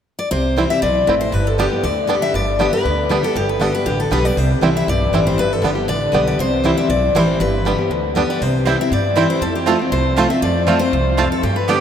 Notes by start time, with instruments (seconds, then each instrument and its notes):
0.19 steel-string acoustic guitar D5
0.31 upright bass C2, steel-string acoustic guitar C3 C5
0.56 steel-string acoustic guitar E3 G3 C4 E4, five-string banjo G3 C4 E4
0.70 steel-string acoustic guitar E5
0.82 upright bass B1, steel-string acoustic guitar B2 D5
1.07 upright bass A1, steel-string acoustic guitar A2, five-string banjo G3 C4 E4
1.21 steel-string acoustic guitar C5
1.32 upright bass G1, steel-string acoustic guitar G2 B4
1.47 steel-string acoustic guitar A4
1.58 steel-string acoustic guitar D3 G3 B3 G4, five-string banjo G3 B3 D4
1.71 steel-string acoustic guitar B3 G4
1.83 upright bass D2, steel-string acoustic guitar D3 D5
2.07 steel-string acoustic guitar D3 G3 B3 G4, five-string banjo G3 B3 D4
2.22 steel-string acoustic guitar E5
2.34 upright bass G1, steel-string acoustic guitar G2 D5
2.59 steel-string acoustic guitar D3 G3 B3 G4, five-string banjo G3 B3 D4
2.73 steel-string acoustic guitar B3 G4 B4
2.85 upright bass D2, steel-string acoustic guitar D3
3.09 steel-string acoustic guitar D3 G3 B3 G4, five-string banjo G3 B3 D4
3.23 steel-string acoustic guitar B3 G4 A4
3.35 upright bass G1, steel-string acoustic guitar G2 G4
3.49 steel-string acoustic guitar B4
3.60 steel-string acoustic guitar D3 G3 B3 G4 A4, five-string banjo G3 B3 D4
3.72 steel-string acoustic guitar B3 G4 B4
3.85 upright bass A1, steel-string acoustic guitar D3 G4
4.00 steel-string acoustic guitar A4
4.11 upright bass B1, steel-string acoustic guitar D3 G3 B3 G4 B4, five-string banjo G3 B3 D4
4.24 steel-string acoustic guitar B3 G4 D5
4.37 upright bass C2, steel-string acoustic guitar C3 C5
4.61 upright bass C2, steel-string acoustic guitar E3 G3 C4 E4, five-string banjo G3 C4 E4
4.77 steel-string acoustic guitar E5
4.87 upright bass B1, steel-string acoustic guitar G2 D5
5.12 upright bass A1, steel-string acoustic guitar E3 G3 C4 E4, five-string banjo G3 C4 E4
5.27 steel-string acoustic guitar C5
5.37 upright bass G1, steel-string acoustic guitar G2 B4
5.53 steel-string acoustic guitar A4
5.62 upright bass G1, steel-string acoustic guitar D3 G3 B3 G4, five-string banjo G3 B3 D4
5.75 steel-string acoustic guitar B3 G4
5.88 upright bass A1, steel-string acoustic guitar D3 D5
6.12 upright bass B1, steel-string acoustic guitar D3 G3 B3 G4, five-string banjo G3 B3 D4
6.27 steel-string acoustic guitar D5
6.38 upright bass C2, steel-string acoustic guitar C3 C5
6.64 steel-string acoustic guitar E3 G3 C4 E4, five-string banjo G3 C4 E4
6.78 steel-string acoustic guitar E5
6.89 upright bass B1, steel-string acoustic guitar G2 D5
7.14 upright bass A1, steel-string acoustic guitar E3 G3 C4 E4 C5, five-string banjo G3 C4 E4
7.39 upright bass G1, steel-string acoustic guitar G2 B4
7.65 steel-string acoustic guitar D3 G3 B3 G4, five-string banjo G3 B3 D4
7.78 steel-string acoustic guitar B3 G4
7.90 upright bass D2, steel-string acoustic guitar D3
8.15 steel-string acoustic guitar D3 G3 B3 G4, five-string banjo G3 B3 D4
8.30 steel-string acoustic guitar D5
8.41 upright bass C2, steel-string acoustic guitar C3 C5
8.65 steel-string acoustic guitar E3 G3 C4 E4, five-string banjo G3 C4 E4, mandolin C4 E4 C5 G5
8.79 steel-string acoustic guitar C4 E4 E5
8.91 upright bass G2, steel-string acoustic guitar G2 D5
9.15 steel-string acoustic guitar E3 G3 C4 E4, five-string banjo G3 C4 E4, mandolin C4 E4 C5 G5
9.30 steel-string acoustic guitar C5
9.41 upright bass F2, steel-string acoustic guitar F2 A4
9.55 steel-string acoustic guitar G4
9.66 steel-string acoustic guitar F3 A3 C4 F4, five-string banjo A3 C4 F4, mandolin C4 F4 C5 A5
9.79 steel-string acoustic guitar C4 F4
9.91 upright bass C2, steel-string acoustic guitar C3 C5
10.16 steel-string acoustic guitar F3 A3 C4 F4, five-string banjo A3 C4 F4, mandolin C4 F4 C5 A5
10.30 steel-string acoustic guitar C4 F4 E5
10.42 upright bass F2, steel-string acoustic guitar F2 D5
10.67 steel-string acoustic guitar F3 A3 C4 F4, five-string banjo A3 C4 F4, mandolin C4 F4 C5 A5
10.79 steel-string acoustic guitar C4 F4 C5
10.92 upright bass C2, steel-string acoustic guitar E2
11.17 steel-string acoustic guitar F2, five-string banjo A3 C4 F4, mandolin C4 F4 C5 A5
11.32 steel-string acoustic guitar A4
11.43 upright bass G2, steel-string acoustic guitar G2 G4
11.56 steel-string acoustic guitar B4
11.68 steel-string acoustic guitar D3 G3 B3 G4 A4, five-string banjo G3 B3 D4, mandolin B3 G4 D5 G5